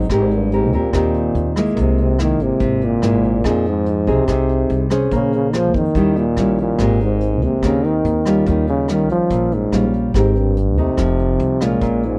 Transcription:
Already playing: bass clarinet G#3
0.10 upright bass G#1, trombone G#2, nylon-string guitar G#3 C4 G4 A#4, kick, cross-stick, closed hi-hat
0.31 closed hi-hat
0.35 trombone G2
0.52 nylon-string guitar C4 G4 A#4, closed hi-hat
0.56 trombone G#2
0.73 upright bass D#2, trombone A#2, nylon-string guitar C4 G4 A#4, closed hi-hat
0.93 upright bass D#2, nylon-string guitar D#3 C4 G4 A#4, kick, cross-stick, closed hi-hat
1.14 closed hi-hat
1.35 upright bass D#2, closed hi-hat
1.56 nylon-string guitar G#3 A#3 E4, cross-stick, closed hi-hat
1.77 upright bass C2, nylon-string guitar C3, trombone C3, kick, closed hi-hat
1.98 closed hi-hat
2.02 trombone C3
2.19 trombone D#3, nylon-string guitar G#3 A#3 E4, cross-stick, closed hi-hat
2.40 upright bass G#1, trombone C3, closed hi-hat
2.60 upright bass G#1, nylon-string guitar C3, kick, closed hi-hat
2.81 trombone A#2, closed hi-hat
3.02 upright bass G#1, nylon-string guitar G#3 A#3 E4, cross-stick, closed hi-hat
3.23 closed hi-hat
3.44 upright bass F2, trombone A#2, nylon-string guitar F3 C4 D#4 G#4, kick, cross-stick, closed hi-hat
3.65 trombone G#2, closed hi-hat
3.86 closed hi-hat
4.07 upright bass C2, trombone C3, nylon-string guitar C4 D#4 G#4, closed hi-hat
4.28 upright bass C2, nylon-string guitar C3 C4 D#4 G#4, kick, cross-stick, closed hi-hat
4.49 closed hi-hat
4.70 upright bass C2, closed hi-hat
4.90 nylon-string guitar C#4 G#4 C5, cross-stick, closed hi-hat
5.11 upright bass A#1, trombone C#3, nylon-string guitar A#3, kick, closed hi-hat
5.33 trombone C#3, closed hi-hat
5.53 trombone F3, nylon-string guitar C#4 G#4 C5, cross-stick, closed hi-hat
5.74 upright bass F2, trombone D#3, kick, closed hi-hat
5.95 upright bass D#2, nylon-string guitar D#3 G3 C#4 E4, kick, closed hi-hat
6.16 trombone A#2, closed hi-hat
6.37 upright bass A#1, nylon-string guitar G3 C#4 E4, cross-stick, closed hi-hat
6.58 closed hi-hat
6.62 trombone A#2
6.78 upright bass G#1, nylon-string guitar G#3 C4 G4 A#4, kick, cross-stick, closed hi-hat
7.00 trombone G#2, closed hi-hat
7.21 closed hi-hat
7.42 upright bass D#2, trombone C3, closed hi-hat
7.63 upright bass D#2, trombone C#3, nylon-string guitar D#3 C4 G4 A#4, kick, cross-stick, closed hi-hat
7.84 trombone D#3, closed hi-hat
8.05 upright bass D#2, closed hi-hat
8.25 nylon-string guitar G3 C#4 F4, cross-stick, closed hi-hat
8.46 upright bass D#2, nylon-string guitar D#3, trombone D#3, kick, closed hi-hat
8.67 trombone C#3, closed hi-hat
8.88 trombone D#3, nylon-string guitar G3 C#4 F4, cross-stick, closed hi-hat
9.09 upright bass A#1, trombone F3, closed hi-hat
9.30 upright bass A#1, nylon-string guitar A#2, kick, closed hi-hat
9.52 trombone G#2, closed hi-hat
9.72 upright bass A#1, nylon-string guitar G3 C#4 F4, cross-stick, closed hi-hat
9.93 closed hi-hat
10.14 upright bass G#1, trombone G#2, nylon-string guitar C4 G4 A#4, kick, cross-stick, closed hi-hat
10.35 trombone G2, closed hi-hat
10.57 closed hi-hat
10.77 upright bass D#2, trombone C3, nylon-string guitar A3 D#4, closed hi-hat
10.97 upright bass F1, nylon-string guitar F3, kick, cross-stick, closed hi-hat
11.19 closed hi-hat
11.39 upright bass C2, closed hi-hat
11.61 trombone A#2, nylon-string guitar G#3 C#4 F4, cross-stick, closed hi-hat
11.81 upright bass A#1, nylon-string guitar A#2, kick, closed hi-hat
12.03 trombone G#2, closed hi-hat

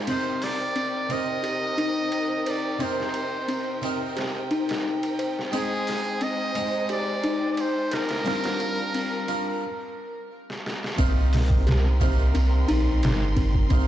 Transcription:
0.07 harpsichord C3 C4 D#4 A#4, music box C4, violin section C4 D#4 A#4 G5, muted trumpet C5, ride
0.42 muted trumpet D5, snare, open hi-hat
0.76 music box C4, ride
1.09 harpsichord C3 C4 D#4 A#4, muted trumpet D#5, ride
1.43 music box G4, ride
1.78 music box D#4, ride
2.12 ride
2.46 music box C5, muted trumpet D5, ride
2.79 harpsichord C3 C4 D#4 A#4, music box C4, muted trumpet C5, ride
3.00 snare
3.14 ride
3.48 music box C4, ride
3.82 harpsichord C3 C4 D#4 A#4, ride
4.17 music box G4, snare, ride
4.51 music box D#4, ride
4.69 snare, ride
5.03 ride
5.19 music box C5, ride
5.39 snare
5.52 harpsichord G#3 D#4 C5 G5, violin section G#3 D#4 C5, music box C4, muted trumpet G#4, ride
5.87 snare, open hi-hat
6.21 music box C4, muted trumpet D#5, ride
6.55 harpsichord G#3 D#4 G4 C5, ride
6.89 music box G4, muted trumpet D5, ride
7.24 music box D#4, ride
7.52 muted trumpet D5
7.57 muted trumpet C5, ride
7.91 muted trumpet A#4, music box C5, snare, ride
8.09 snare, ride
8.24 harpsichord G3 D4 F4 A#4, violin section G3 D4 F4 A#4, music box C4, snare, ride
8.44 snare, ride
8.60 ride
8.94 music box C4, ride
9.28 harpsichord G3 D4 F4 A#4, ride
10.50 snare
10.66 snare
10.84 snare
10.98 sub bass C2, harpsichord C3 A#3 D#4 C5, music box C4, violin section D#4 A#4 G5 C6, kick, ride
11.33 snare, open hi-hat
11.50 kick
11.67 music box G4, snare, ride
12.00 harpsichord C3 A#3 D#4 C5, kick, ride
12.34 sub bass C2, music box C4, ride
12.68 sub bass A#1, music box D#4, ride
13.03 sub bass G1, snare, ride
13.36 music box C4, kick, ride
13.54 kick
13.70 sub bass C2, harpsichord C3 A#3 D#4, music box C4, kick, ride
13.74 harpsichord C5

